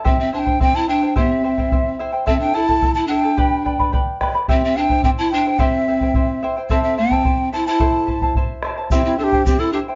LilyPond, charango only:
\new Staff \with { instrumentName = "Charango" } { \time 2/4 \key c \major \tempo 4 = 108 <e' g' c'' e'' g''>8 <e' c'' e'' g''>16 <e' c'' g''>16 <e' c'' e'' g''>8 <e' c'' e'' g''>16 <e' c'' g''>16 | <e' g' c'' e'' g''>8 <e' c'' e'' g''>16 <e' c'' g''>16 <e' c'' e'' g''>8 <e' c'' e'' g''>16 <e' c'' g''>16 | <e' a' c'' e'' a''>8 <e' a' e'' a''>16 <e' a' a''>16 <e' a' e'' a''>8 <e' a' e'' a''>16 <e' a' a''>16 | <g' b' d'' g'' b''>8 <b' d'' g'' b''>16 <b' d'' b''>16 <b' d'' g'' b''>8 <b' d'' g'' b''>16 <b' d'' b''>16 |
<e' g' c'' e'' g''>8 <e' c'' e'' g''>16 <e' c'' g''>16 <e' c'' e'' g''>8 <e' c'' e'' g''>16 <e' c'' g''>16 | <e' g' c'' e'' g''>8 <e' c'' e'' g''>16 <e' c'' g''>16 <e' c'' e'' g''>8 <e' c'' e'' g''>16 <e' c'' g''>16 | <e' a' c'' e'' a''>8 <e' c'' e'' a''>16 <e' c'' a''>16 <e' c'' e'' a''>8 <e' c'' e'' a''>16 <e' c'' a''>16 | <e' a' c'' e'' a''>8 <e' c'' e'' a''>16 <e' c'' a''>16 <e' c'' e'' a''>8 <e' c'' e'' a''>16 <e' c'' a''>16 |
<e' g' c'' e'' g''>8 <e' c'' e'' g''>16 <e' c'' g''>16 <e' c'' e'' g''>8 <e' c'' e'' g''>16 <e' c'' g''>16 | }